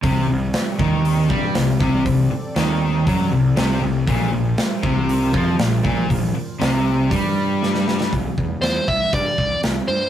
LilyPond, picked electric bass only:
\new Staff \with { instrumentName = "Picked electric bass" } { \clef bass \time 4/4 \key bes \lydian \tempo 4 = 119 c,8 c,8 r8 ees,4 g,8 c,8 c,8 | c,8 r8 ees,4 fis,8 c,8 c,8 c,8 | bes,,8 bes,,8 r8 c,4 f,8 bes,,8 bes,,8 | bes,,8 r8 c,4 g,2 |
c,8 e,8 e,8 c,8 g,8 c,8 c,8 g,8 | }